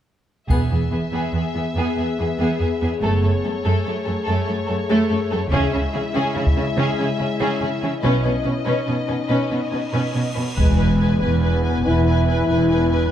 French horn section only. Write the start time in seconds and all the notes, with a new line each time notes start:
0.48 B3 G#4
3.65 A3
5.53 G#3 E4
8.03 C#4
8.67 D#4
10.58 G#3
11.22 B3
11.86 E4